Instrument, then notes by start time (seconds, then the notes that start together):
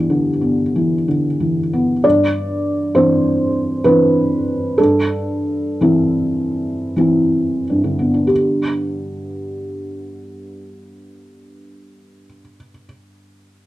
felt piano
Already playing: G2 E3 B3 G4
0.10 D3
0.41 B3
0.76 E3
1.08 D3
1.40 E3
1.73 B3
2.04 G2 D5
2.95 E3 C4 D4 C5
3.84 E3 C4 D4 B4
4.78 G2 A4
5.81 E3 C4 E4
6.96 E3 C4 E4
7.70 G2
7.84 D3
7.99 B3
8.14 D4
8.27 G4